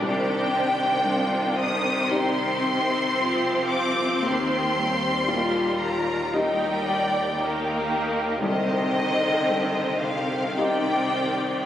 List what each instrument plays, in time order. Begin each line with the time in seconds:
Already playing: viola section D4
0.02 grand piano C2, double bass section C2, cello section C3, viola section D#3, violin section G4 C5 G5
1.05 grand piano G2, violin section F4
1.60 violin section G4 D#6
2.11 viola section C4, grand piano D#4 G4 D5, violin section C6
3.19 viola section F3, violin section G4
3.70 violin section F4 D6
4.22 grand piano D#2, cello section D#2, double bass section D#2, viola section D#3, violin section G4 C5 C6
4.78 viola section G3
5.28 grand piano A#2, viola section F4, violin section G4 A#4
5.81 violin section A#4 A#5
6.34 viola section G3 D#4, grand piano D#4 G4 D#5, violin section A#4 G5
6.87 viola section D5
7.39 viola section A#3 D#4, violin section G4 A#4
8.42 grand piano C2, double bass section C2, cello section C3, viola section D3 D#3, violin section G4 C5 D#5
9.49 grand piano G2
10.03 violin section F5
10.57 viola section D#3 D5, grand piano D#4 G4 D#5, violin section G4 C5 G5